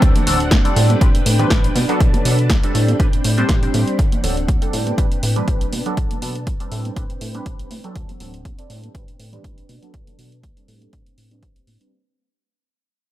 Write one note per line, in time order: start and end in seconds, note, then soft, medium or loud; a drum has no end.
0.00 0.12 D2 loud
0.00 0.24 F#3 medium
0.00 0.24 C4 medium
0.00 1.73 C4 medium
0.00 0.24 D4 medium
0.00 8.66 D4 medium
0.00 0.24 A4 loud
0.00 0.76 F#5 medium
0.00 kick loud
0.00 closed hi-hat medium
0.00 shaker medium
0.16 closed hi-hat soft
0.16 high conga medium
0.16 low conga medium
0.16 shaker soft
0.27 0.53 D1 medium
0.27 0.39 F#3 medium
0.27 0.39 C4 medium
0.27 0.39 D4 medium
0.27 0.39 A4 medium
0.27 open hi-hat loud
0.40 closed hi-hat soft
0.40 shaker medium
0.51 0.62 D2 medium
0.51 kick loud
0.51 snare loud
0.51 closed hi-hat medium
0.51 high conga medium
0.51 shaker medium
0.65 0.98 G3 medium
0.65 0.98 C4 medium
0.65 0.99 D4 medium
0.65 0.99 A4 medium
0.65 closed hi-hat soft
0.65 shaker soft
0.76 0.96 A2 loud
0.76 2.73 B4 medium
0.76 1.75 G5 medium
0.76 open hi-hat medium
0.90 closed hi-hat soft
0.90 high conga medium
0.90 shaker medium
1.01 1.11 A1 medium
1.01 1.08 G3 medium
1.01 1.09 C4 medium
1.01 1.09 D4 medium
1.01 1.09 B4 loud
1.01 kick loud
1.01 closed hi-hat medium
1.01 shaker medium
1.15 1.24 A2 soft
1.15 closed hi-hat medium
1.15 shaker soft
1.26 1.45 A2 medium
1.26 open hi-hat loud
1.39 1.74 G3 medium
1.39 1.74 C4 medium
1.39 1.74 D4 medium
1.39 1.75 B4 medium
1.39 closed hi-hat soft
1.39 high conga medium
1.39 low conga medium
1.39 shaker medium
1.50 1.70 A1 medium
1.50 kick loud
1.50 snare loud
1.50 closed hi-hat medium
1.50 shaker medium
1.64 closed hi-hat soft
1.64 shaker soft
1.75 1.86 B2 medium
1.75 2.74 A5 medium
1.75 open hi-hat medium
1.75 high conga medium
1.89 2.22 F#3 medium
1.89 2.22 B3 medium
1.89 2.23 D4 medium
1.89 2.23 A4 loud
1.89 closed hi-hat soft
1.89 shaker medium
2.00 2.11 B1 loud
2.00 kick loud
2.00 closed hi-hat medium
2.00 shaker medium
2.13 2.23 B2 soft
2.13 closed hi-hat soft
2.13 high conga loud
2.13 low conga medium
2.13 shaker soft
2.25 2.52 B2 medium
2.25 2.37 F#3 medium
2.25 2.37 B3 medium
2.25 2.37 D4 medium
2.25 2.37 A4 medium
2.25 open hi-hat loud
2.39 closed hi-hat soft
2.39 shaker medium
2.50 2.60 B1 medium
2.50 kick loud
2.50 snare loud
2.50 closed hi-hat medium
2.50 high conga medium
2.50 shaker medium
2.63 2.97 G3 medium
2.63 2.97 C4 medium
2.63 2.97 D4 medium
2.63 2.97 A4 medium
2.63 closed hi-hat soft
2.75 2.94 A2 medium
2.75 5.69 C4 medium
2.75 3.97 G5 medium
2.75 3.98 B5 medium
2.75 open hi-hat medium
2.88 closed hi-hat soft
2.88 high conga medium
2.88 shaker medium
2.99 3.10 A1 medium
2.99 3.07 G3 medium
2.99 3.07 C4 medium
2.99 3.07 D4 medium
2.99 3.07 B4 medium
2.99 kick loud
2.99 closed hi-hat medium
3.13 3.22 A2 soft
3.13 closed hi-hat soft
3.13 shaker soft
3.24 3.44 A2 medium
3.24 open hi-hat loud
3.38 3.59 G3 medium
3.38 3.59 C4 medium
3.38 3.60 D4 medium
3.38 3.60 C5 loud
3.38 closed hi-hat soft
3.38 high conga medium
3.38 shaker medium
3.49 3.68 A1 medium
3.49 kick loud
3.49 snare loud
3.49 closed hi-hat medium
3.62 3.97 G3 medium
3.62 3.97 C4 medium
3.62 3.98 D4 medium
3.62 3.98 C5 medium
3.62 closed hi-hat soft
3.74 3.84 A2 medium
3.74 open hi-hat medium
3.74 high conga medium
3.88 closed hi-hat soft
3.99 4.09 D2 medium
3.99 4.73 F#5 medium
3.99 kick loud
3.99 closed hi-hat medium
3.99 shaker medium
4.12 closed hi-hat soft
4.12 high conga loud
4.12 low conga medium
4.12 shaker soft
4.23 4.50 D1 medium
4.23 4.35 F#3 medium
4.23 4.35 C4 medium
4.23 4.36 D4 medium
4.23 4.36 A4 medium
4.23 open hi-hat loud
4.37 closed hi-hat soft
4.37 shaker medium
4.48 4.59 D2 medium
4.48 kick medium
4.48 closed hi-hat medium
4.48 high conga medium
4.48 shaker medium
4.62 4.95 G3 medium
4.62 4.95 C4 medium
4.62 4.95 D4 medium
4.62 4.96 A4 medium
4.62 closed hi-hat soft
4.62 shaker soft
4.73 4.92 A2 medium
4.73 6.69 B4 medium
4.73 5.71 G5 medium
4.73 open hi-hat medium
4.87 closed hi-hat soft
4.87 high conga medium
4.87 shaker medium
4.98 5.08 A1 medium
4.98 5.05 G3 medium
4.98 5.05 C4 medium
4.98 5.06 D4 medium
4.98 5.06 B4 medium
4.98 kick loud
4.98 closed hi-hat medium
5.12 5.21 A2 soft
5.12 closed hi-hat soft
5.12 shaker soft
5.23 5.42 A2 medium
5.23 open hi-hat loud
5.36 5.71 G3 medium
5.36 5.71 C4 medium
5.36 5.71 D4 medium
5.36 5.71 B4 medium
5.36 closed hi-hat soft
5.36 high conga medium
5.36 low conga medium
5.36 shaker medium
5.48 5.67 A1 medium
5.48 kick loud
5.48 closed hi-hat medium
5.61 closed hi-hat soft
5.61 shaker soft
5.72 5.83 B2 medium
5.72 6.71 A5 medium
5.72 open hi-hat medium
5.72 high conga medium
5.86 6.19 F#3 medium
5.86 6.19 B3 medium
5.86 6.19 D4 medium
5.86 6.20 A4 loud
5.86 closed hi-hat soft
5.86 shaker medium
5.97 6.07 B1 medium
5.97 kick loud
5.97 closed hi-hat medium
6.11 6.20 B2 soft
6.11 closed hi-hat soft
6.11 high conga medium
6.11 low conga medium
6.11 shaker soft
6.22 6.48 B2 medium
6.22 6.34 F#3 medium
6.22 6.34 B3 medium
6.22 6.34 D4 medium
6.22 6.34 A4 medium
6.22 open hi-hat loud
6.36 closed hi-hat soft
6.36 shaker medium
6.46 6.57 B1 medium
6.46 kick medium
6.46 closed hi-hat medium
6.46 high conga medium
6.46 shaker medium
6.60 6.94 G3 medium
6.60 6.94 C4 medium
6.60 6.94 D4 medium
6.60 6.94 A4 medium
6.60 closed hi-hat soft
6.60 shaker soft
6.72 6.91 A2 loud
6.72 9.66 C4 medium
6.72 7.94 B4 medium
6.72 7.94 G5 medium
6.72 open hi-hat medium
6.85 closed hi-hat soft
6.85 high conga medium
6.85 shaker medium
6.96 7.07 A1 medium
6.96 7.04 G3 medium
6.96 7.04 C4 medium
6.96 7.04 D4 medium
6.96 7.04 B4 loud
6.96 kick loud
6.96 closed hi-hat medium
7.10 7.19 A2 soft
7.10 closed hi-hat soft
7.10 shaker soft
7.21 7.40 A2 medium
7.21 open hi-hat loud
7.34 7.81 G3 medium
7.34 7.81 C4 medium
7.34 7.81 D4 medium
7.34 7.81 B4 medium
7.34 closed hi-hat soft
7.34 high conga medium
7.34 shaker medium
7.46 7.65 A1 medium
7.46 kick medium
7.46 closed hi-hat medium
7.59 closed hi-hat soft
7.59 shaker soft
7.71 7.81 A2 medium
7.71 open hi-hat medium
7.71 high conga medium
7.84 8.17 F#3 medium
7.84 8.18 C4 medium
7.84 8.18 D4 medium
7.84 8.18 A4 loud
7.84 closed hi-hat soft
7.84 shaker medium
7.95 8.06 D2 medium
7.95 8.69 F#5 medium
7.95 kick loud
7.95 closed hi-hat medium
7.95 shaker medium
8.09 closed hi-hat soft
8.09 high conga medium
8.09 low conga medium
8.09 shaker soft
8.20 8.47 D1 medium
8.20 8.32 F#3 medium
8.20 8.32 C4 medium
8.20 8.32 D4 medium
8.20 8.33 A4 medium
8.20 open hi-hat medium
8.33 closed hi-hat soft
8.33 shaker medium
8.45 8.55 D2 medium
8.45 kick medium
8.45 closed hi-hat medium
8.45 high conga medium
8.45 shaker medium
8.58 8.92 G3 medium
8.58 8.92 C4 medium
8.58 8.92 D4 medium
8.58 8.92 A4 medium
8.58 closed hi-hat soft
8.58 shaker soft
8.70 8.89 A2 medium
8.70 11.89 D4 medium
8.70 11.89 B4 medium
8.70 9.68 G5 medium
8.70 open hi-hat medium
8.83 closed hi-hat soft
8.83 high conga medium
8.83 shaker medium
8.94 9.05 A1 medium
8.94 9.02 G3 medium
8.94 9.02 C4 medium
8.94 9.02 D4 medium
8.94 9.02 B4 medium
8.94 kick loud
8.94 closed hi-hat medium
9.08 9.17 A2 soft
9.08 closed hi-hat soft
9.08 shaker soft
9.19 9.39 A2 medium
9.19 open hi-hat medium
9.32 9.68 G3 medium
9.32 9.68 C4 medium
9.32 9.68 D4 medium
9.32 9.68 B4 medium
9.32 closed hi-hat soft
9.32 high conga medium
9.32 low conga medium
9.32 shaker medium
9.44 9.63 A1 medium
9.44 kick medium
9.44 closed hi-hat medium
9.44 shaker medium
9.57 closed hi-hat soft
9.57 shaker soft
9.69 9.79 B2 medium
9.69 10.67 A5 medium
9.69 open hi-hat medium
9.69 high conga medium
9.82 10.16 F#3 medium
9.82 10.16 B3 medium
9.82 10.16 D4 medium
9.82 10.16 A4 loud
9.82 closed hi-hat soft
9.82 shaker medium
9.94 10.04 B1 medium
9.94 kick loud
9.94 closed hi-hat medium
10.07 10.16 B2 soft
10.07 closed hi-hat soft
10.07 high conga medium
10.07 low conga medium
10.07 shaker soft
10.18 10.45 B2 medium
10.18 10.30 F#3 medium
10.18 10.31 B3 medium
10.18 10.31 D4 medium
10.18 10.31 A4 medium
10.18 open hi-hat medium
10.32 closed hi-hat soft
10.32 shaker medium
10.43 10.54 B1 medium
10.43 kick medium
10.43 closed hi-hat medium
10.43 high conga medium
10.43 shaker medium
10.56 10.90 G3 medium
10.56 10.90 C4 medium
10.56 10.90 D4 medium
10.56 10.90 A4 medium
10.56 closed hi-hat medium
10.68 10.87 A2 medium
10.68 11.91 C4 medium
10.68 11.91 G5 medium
10.68 open hi-hat medium
10.81 closed hi-hat soft
10.81 high conga medium
10.81 shaker medium
10.93 11.03 A1 medium
10.93 kick loud
10.93 closed hi-hat medium
11.06 11.16 A2 soft
11.06 closed hi-hat medium
11.06 shaker soft
11.18 11.44 A2 medium
11.18 open hi-hat medium
11.31 11.77 G3 medium
11.31 11.78 C4 medium
11.31 11.78 D4 medium
11.31 11.78 B4 medium
11.31 closed hi-hat soft
11.31 high conga medium
11.31 shaker medium
11.43 11.62 A1 medium
11.43 kick medium
11.43 closed hi-hat medium
11.56 closed hi-hat medium
11.56 shaker soft
11.67 11.78 A2 medium
11.67 open hi-hat medium
11.67 high conga medium
11.80 11.91 G3 medium
11.80 11.91 C4 medium
11.80 11.91 D4 medium
11.80 11.91 B4 medium
11.80 closed hi-hat soft